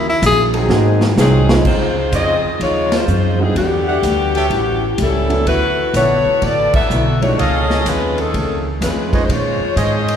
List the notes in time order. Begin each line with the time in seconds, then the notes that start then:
Already playing: D#2
0.09 E4
0.22 A#1 D#3 A#3 C#4 F#4, kick, hi-hat pedal, ride
0.26 G#4
0.53 F#3 C4 D#4 G#4, ride
0.69 G#1 G#2 F#3 G#3 A#3 C4 D#4 F#4, snare
1.01 snare
1.16 C2 G#2 F#3 C4 D#4 F4 G#4, snare, hi-hat pedal
1.49 G#3 C4 C#4 D#4 F4, snare
1.64 C#2 C#3 F3 G#3 C4 D#4 F4 C5, kick, crash
2.12 F2 C#3 F3 C4 D#4 F4 G#4 C5 C#5 D#5, kick, hi-hat pedal, ride
2.44 muted upright bass stroke
2.59 D#2 C#3 F3 G#3 C4 D#4 F4 C#5, kick, ride
2.92 G#3 D#4 F4 C5, snare, ride
3.08 F#2 C#3 F3 C4 D#4, hi-hat pedal
3.39 F3 G3 B3 C4 D4 D#4 E4 F#4 G#4
3.55 E2 D3 E3 G3 B3 D4 F#4 G4, kick, ride
3.87 G4 D5 E5 F#5
4.03 D2 E3 G3 D4 F#4, kick, hi-hat pedal, ride
4.35 A4 C#5 E5 G5, ride
4.50 A1 A2 G3 C#4 E4, kick, ride
4.98 C#2 A2 G3 C#4 E4, kick, hi-hat pedal, ride
5.02 G3 C#4 E4 A4
5.29 F#3 A3 B3 D4 E4, ride
5.46 D2 D3 F#3 A3 B3 E4 F#4 B4, kick, ride
5.94 A#1 D3 F#3 B3 E4 F#4 A4 B4 C#5 D5 E5 F#5, kick, hi-hat pedal, ride
6.25 muted upright bass stroke
6.42 A1 D3 F#3 B3 E4 F#4 A4 D5, kick, ride
6.74 B3 F#4 A4 E5, muted upright bass stroke, kick, crash
6.90 B1 D3 F#3 B3 E4, hi-hat pedal
7.21 F3 G#3 A3 C#4 D4 D#4 F#4 C#5, ride
7.37 C#2 F2 D#3 C#4 G#4 A4 C#5 D#5 F5, kick, ride
7.41 A3 C#4
7.70 snare
7.86 D#2 F2 D#3 G#3 A3 C#4 F4 B4, kick, hi-hat pedal, ride
8.18 D#3 C#4 G#4 A4, ride
8.34 C#2 F2 D#3 A3 C#4, kick, ride
8.81 F2 D#3 G#3 A3 C#4 F4 B4, kick, snare, hi-hat pedal, ride
9.13 F3 G#3 C4 C#4 D#4 G#4 C5 C#5 D#5, kick, ride
9.25 A#2 C5
9.29 A#2 D#3 G#3 C#4 F4 C5 C#5, kick, ride
9.60 muted upright bass stroke
9.75 G#2 A#2 D#3 G#3 C#4 G#4 C5 C#5 D#5, kick, hi-hat pedal, ride
10.08 ride